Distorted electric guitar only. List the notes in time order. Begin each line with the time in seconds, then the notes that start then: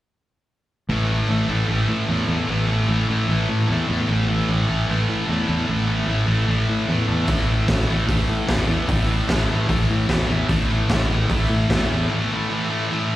0.89 A2 E3 A3
1.08 E3 A3
1.29 A2 E3 A3
1.49 E3 A3
1.68 A2 E3 A3
2.09 A2 E3 A3
2.28 E3 A3
2.47 A2 E3 A3
2.69 E3 A3
2.87 A2 E3
2.92 A3
3.09 E3 A3
3.28 A2 E3 A3
3.68 A2 E3
3.73 A3
3.89 E3 A3
4.08 A2 E3 A3
4.29 E3 A3
4.49 A2 E3 A3
4.67 E3 A3
4.87 A2 E3 A3
5.27 A2 E3
5.31 A3
5.47 E3 A3
5.66 A2 E3 A3
5.87 E3 A3
6.07 A2 E3 A3
6.27 E3 A3
6.47 A2 E3 A3
6.88 A2 E3 A3
7.08 A3
7.12 E3
7.28 A2 E3 A3
7.48 A3
7.52 E3
7.68 A2 E3 A3
7.88 E3 A3
8.07 A2 E3
8.12 A3
8.48 A2 E3 A3
8.68 E3 A3
8.88 A2 E3 A3
9.07 E3 A3
9.28 A2 E3
9.32 A3
9.48 E3 A3
9.67 A2 E3
9.72 A3
10.08 A2 E3 A3
10.28 A3
10.32 E3
10.48 A2 E3 A3
10.69 E3 A3
10.90 A2 E3 A3
11.10 E3 A3
11.30 A2 E3 A3
11.71 A2 E3 A3
11.91 E3 A3
12.10 A2 E3 A3
12.32 E3 A3
12.50 A2 E3 A3
12.69 E3 A3
12.90 A2 E3 A3